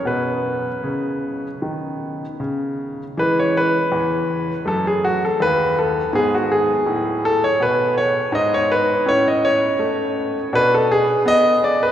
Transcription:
<<
  \new Staff \with { instrumentName = "Grand piano" } { \time 4/4 \key b \major \tempo 4 = 82 b'2.~ b'8 r8 | \key e \major b'16 cis''16 b'4. a'16 gis'16 fis'16 a'16 b'8 a'8 | gis'16 fis'16 gis'4 a'16 cis''16 b'8 cis''8 dis''16 cis''16 b'8 | cis''16 dis''16 cis''4. b'16 a'16 gis'8 dis''8 d''16 b'16 | }
  \new Staff \with { instrumentName = "Grand piano" } { \clef bass \time 4/4 \key b \major << { b1 | \key e \major gis2 a2 | b1 | cis'2 d'2 | } \\ { b,4 cis4 dis4 cis4 | e4 e,4 fis,4 dis,4 | gis,4 a,4 b,4 gis,4 | a,4 a4 b,4 b4 | } >> }
>>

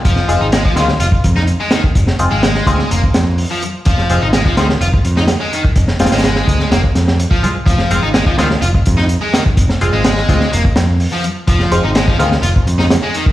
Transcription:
<<
  \new Staff \with { instrumentName = "Synth stab" } { \time 4/4 \key f \dorian \tempo 4 = 126 r8 <aes c' f'>8 r8 <aes c' f'>8 r2 | r8 <aes c' f'>8 r8 <aes c' f'>8 r2 | r8 <aes c' f'>8 r8 <aes c' f'>8 r2 | r8 <aes c' f'>8 r2 r8 <aes c' f'>8 |
r8 <aes c' f'>8 r8 <aes c' f'>8 r2 | r8 <aes c' f'>8 r8 <aes c' f'>8 r2 | r8 <aes c' f'>8 r8 <aes c' f'>8 r2 | }
  \new Staff \with { instrumentName = "Distorted electric guitar" } { \clef bass \time 4/4 \key f \dorian f8. ees'16 aes16 f16 ees16 r16 f'16 r8 ees'16 r16 aes16 ees16 r16 | r8. aes16 aes4 bes16 r4 f16 r8 | f8. ees'16 aes16 f16 ees16 r16 f'16 r8 ees'16 r16 aes16 ees16 r16 | r8. aes16 aes4 bes16 r4 f16 r8 |
f8. ees'16 aes16 f16 ees16 r16 f'16 r8 ees'16 r16 aes16 ees16 r16 | r8. aes16 aes4 bes16 r4 f16 r8 | f8. ees'16 aes16 f16 ees16 r16 f'16 r8 ees'16 r16 aes16 ees16 r16 | }
  \new Staff \with { instrumentName = "Picked electric bass" } { \clef bass \time 4/4 \key f \dorian f,,16 r16 f,,16 aes,,8 r16 d,16 r16 f,,16 r16 f,8 r4 | f,,16 r16 f,,16 aes,,8 r16 d,16 r16 f,,16 r16 f,8 r4 | f,,16 r16 f,,16 aes,,8 r16 d,16 r16 f,,16 r16 f,8 r4 | f,,16 r16 f,,16 aes,,8 r16 d,16 r16 f,,16 r16 f,8 r8 c,16 r16 |
f,,16 r16 f,,16 aes,,8 r16 d,16 r16 f,,16 r16 f,8 r4 | f,,16 r16 f,,16 aes,,8 r16 d,16 r16 f,,16 r16 f,8 r4 | f,,16 r16 f,,16 aes,,8 r16 d,16 r16 f,,16 r16 f,8 r4 | }
  \new DrumStaff \with { instrumentName = "Drums" } \drummode { \time 4/4 <hh bd>16 sn16 hh8 <hh sn>16 bd16 <hh sn>16 sn16 hh16 bd16 <hh bd>16 sn16 hh8 <hh sn>16 bd16 | <hh bd>16 sn16 hh8 <hh sn>16 sn16 <hh bd>16 sn16 hh16 bd16 <hh sn>8 hho8 hh8 | <hh bd>16 sn16 hh8 <hh sn>16 bd16 <hh sn>16 sn16 hh16 bd16 hh16 sn16 <hh sn>8 hh16 bd16 | <hh bd>16 sn16 <hh sn>32 <hh sn>32 <hh sn>32 <hh sn>32 <hh sn>16 sn16 <hh bd>16 sn16 <hh sn>16 bd16 <hh sn>16 sn16 hh16 bd16 hh8 |
<hh bd>16 sn16 hh8 <hh sn>16 bd16 <hh sn>16 sn16 hh16 bd16 <hh bd>16 sn16 hh8 <hh sn>16 bd16 | <hh bd>16 sn16 hh8 <hh sn>16 sn16 <hh bd>16 sn16 hh16 bd16 <hh sn>8 hho8 hh8 | <hh bd>16 sn16 hh8 <hh sn>16 bd16 hh16 sn16 hh16 bd16 hh16 sn16 <hh sn>8 hh16 bd16 | }
>>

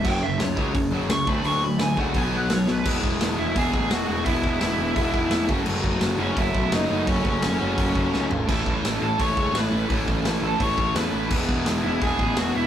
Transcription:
<<
  \new Staff \with { instrumentName = "Lead electric guitar" } { \time 4/4 \key b \dorian \tempo 4 = 170 g''8 e''8 cis''4 r4 cis'''8 b''8 | cis'''8 b''8 gis''8 fis''8 gis''8 fis''8 cis''8 b'8 | \key e \major r4. <e' e''>8 <gis' gis''>4 <fis' fis''>8 <fis' fis''>8 | <e' e''>4 <e' e''>2~ <e' e''>8 r8 |
r4. <cis' cis''>8 <e' e''>4 <dis' dis''>4 | <cis' cis''>8 <cis' cis''>8 <cis' cis''>2~ <cis' cis''>8 r8 | r4. <a' a''>8 <cis'' cis'''>4 <b' b''>4 | r4. <a' a''>8 <cis'' cis'''>4 <b' b''>4 |
r4. <e' e''>8 <gis' gis''>4 <fis' fis''>8 <e' e''>8 | }
  \new Staff \with { instrumentName = "Distorted electric guitar" } { \clef bass \time 4/4 \key b \dorian <fis, cis fis>8 <fis, cis>8 <fis, cis>8 <fis, cis fis>8 <fis, cis>8 <fis, cis fis>8 <fis, cis>8 <d fis a>8 | <d fis a>8 <d fis>8 <d fis>8 <d fis a>8 <b, fis b>8 <b, fis b>8 <b, fis>8 <b, fis>8 | \key e \major <e gis b e'>2 <e gis b e'>2 | <e gis b e'>2 <e gis b e'>4. <fis a cis' fis'>8~ |
<fis a cis' fis'>4. <fis a cis' fis'>2 <fis a cis' fis'>8~ | <fis a cis' fis'>4. <fis a cis' fis'>2 r8 | <a, e a cis' e'>2 <a, e a cis' e'>2 | <a, e a cis' e'>2 <a, e a cis' e'>2 |
<e gis b e'>2 <e gis b e'>2 | }
  \new Staff \with { instrumentName = "Distorted electric guitar" } { \clef bass \time 4/4 \key b \dorian <fis, cis fis>8 <fis, cis>8 <fis, cis>8 <fis, cis fis>8 <fis, cis>8 <fis, cis fis>8 <fis, cis>8 <d a d'>8 | <d a d'>8 <d a>8 <d a>8 <d a d'>8 <b, fis b>8 <b, fis b>8 <b, fis>8 <b, fis>8 | \key e \major <e, b, e>2 <e, b, e>2 | <e, b, e>2 <e, b, e>4. <fis, cis fis>8~ |
<fis, cis fis>4. <fis, cis fis>2 <fis, cis fis>8~ | <fis, cis fis>4. <fis, cis fis>2 r8 | <a, e a>2 <a, e a>2 | <a, e a>2 <a, e a>2 |
<e, b, e>2 <e, b, e>2 | }
  \new Staff \with { instrumentName = "Picked electric bass" } { \clef bass \time 4/4 \key b \dorian fis,,4 cis,4 fis,,4 cis,8 d,8 | d,4 d,8 cis,8 b,,4 b,,8 b,,8 | \key e \major e,,8 e,,8 e,,8 e,,8 e,,8 a,,8 e,,8 e,,8 | e,,8 e,,8 e,,8 e,,8 e,,8 e,,8 f,,8 fis,,8 |
fis,,8 fis,,8 fis,,8 fis,,8 fis,,8 b,,8 fis,,8 fis,,8 | fis,,8 fis,,8 fis,,8 fis,,8 fis,,8 fis,,8 cis,8 gis,,8 | a,,8 a,,8 a,,8 a,,8 a,,8 cis,8 a,,8 a,,8 | a,,8 a,,8 a,,8 a,,8 a,,8 a,,8 e,8 a,,8 |
e,,8 e,,8 e,,8 e,,8 e,,8 a,,8 e,,8 e,,8 | }
  \new DrumStaff \with { instrumentName = "Drums" } \drummode { \time 4/4 <cymc bd>4 <hho sn>8 bd8 <hho bd>4 <hho sn>8 bd8 | hho4 <hho sn>8 bd8 <hho bd>4 <hho sn>8 sn8 | <cymc bd>8 bd8 <hho sn>4 <hho bd>8 bd8 <hho sn>4 | <hho bd>8 bd8 <hho sn>4 <hho bd>8 bd8 <hho sn>8 bd8 |
cymc8 bd8 <hho sn>4 <hho bd>8 bd8 <hho sn>4 | <hho bd>8 bd8 <hho sn>4 <hho bd>8 bd8 sn8 tomfh8 | <cymc bd>8 bd8 <hho sn>4 <hho bd>8 bd8 <hho sn>4 | <hho bd>8 bd8 <hho sn>4 <hho bd>8 bd8 <hho sn>4 |
<cymc bd>8 bd8 <hho sn>4 <hho bd>8 bd8 <hho sn>4 | }
>>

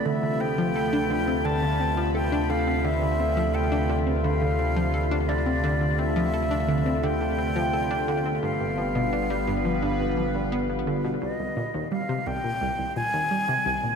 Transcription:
<<
  \new Staff \with { instrumentName = "Flute" } { \time 4/4 \key d \dorian \tempo 4 = 86 e''8 g''4. a''4 g''8 f''8 | e''4 g''8 r8 f''4. d''8~ | d''8 e''4. g''2 | f''2. r4 |
\key c \minor ees''4 f''8 g''4 aes''4. | }
  \new Staff \with { instrumentName = "Synth texture" } { \time 4/4 \key d \dorian <b b''>1~ | <b b''>1~ | <b b''>1~ | <b b''>1 |
\key c \minor r1 | }
  \new Staff \with { instrumentName = "Analog synth pad" } { \time 4/4 \key d \dorian << { <c a>1~ | <c a>1~ | <c a>1 | <g b b'>1 |
\key c \minor <g c' c''>1 | } \\ { <d f'>1~ | <d f'>1~ | <d f'>1~ | <d f'>1 |
<ees ees'>1 | } >> }
  \new Staff \with { instrumentName = "Synth arpeggio sound" } { \clef bass \time 4/4 \key d \dorian d16 d16 c'16 f16 a'16 d'16 d16 c'16 d16 d16 c'16 f16 a'16 d'16 d16 c'16 | d16 d16 c'16 f16 a'16 d'16 d16 c'16 d16 d16 c'16 f16 a'16 d'16 d16 c'16 | d16 d16 c'16 f16 a'16 d'16 d16 c'16 d16 d16 c'16 f16 a'16 d'16 d16 c'16 | g,16 g,16 f16 b,16 d'16 g16 g,16 f16 g,16 g,16 f16 g,16 b16 b,16 d16 b,16 |
\key c \minor c,16 c,16 bes,16 ees,16 g16 c16 c,16 bes,16 c,16 c,16 bes,16 ees,16 g16 c16 c,16 bes,16 | }
  \new Staff \with { instrumentName = "Sub bass" } { \clef bass \time 4/4 \key d \dorian d,1~ | d,1~ | d,1 | g,,1 |
\key c \minor r1 | }
>>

